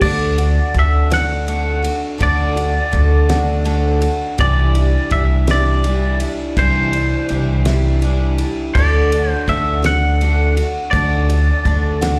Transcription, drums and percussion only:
0.02 kick, crash
0.38 ride
0.74 kick, ride
1.12 snare, ride
1.48 ride
1.84 ride
2.21 kick, ride
2.57 ride
2.93 kick, ride
3.29 snare, ride
3.65 ride
4.02 ride
4.38 kick, ride
4.75 ride
5.11 kick, ride
5.47 snare, ride
5.84 ride
6.20 ride
6.57 kick, ride
6.93 ride
7.29 ride
7.65 snare, ride
8.02 ride
8.38 ride
8.75 kick, crash
9.12 ride
9.48 kick, ride
9.84 snare, ride
10.21 ride
10.57 ride
10.93 kick, ride
11.30 ride
11.65 kick, ride
12.02 snare, ride

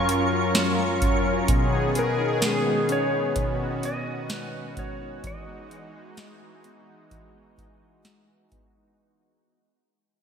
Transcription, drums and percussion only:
0.09 closed hi-hat
0.55 snare, closed hi-hat
1.02 kick, closed hi-hat
1.48 kick, closed hi-hat
1.95 closed hi-hat
2.42 snare, closed hi-hat
2.89 closed hi-hat
3.36 kick, closed hi-hat
3.83 closed hi-hat
4.30 snare, closed hi-hat
4.77 kick, closed hi-hat
5.24 kick, closed hi-hat
5.71 closed hi-hat
6.17 snare, closed hi-hat
6.64 closed hi-hat
7.11 kick, closed hi-hat
7.58 kick, closed hi-hat
8.05 snare, closed hi-hat
8.52 kick, closed hi-hat

